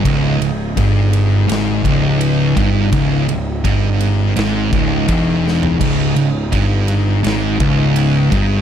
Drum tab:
CC |----------------|----------------|x---------------|
RD |x-x-x-x-x-x-x-x-|x-x-x-x-x-x-x---|x-x-x-x-x-x-x-x-|
SD |--------o-------|--------o-----o-|--------o-------|
FT |----------------|---------------o|----------------|
BD |o---o-----o---o-|o---o-----o-o---|o---o-----o---o-|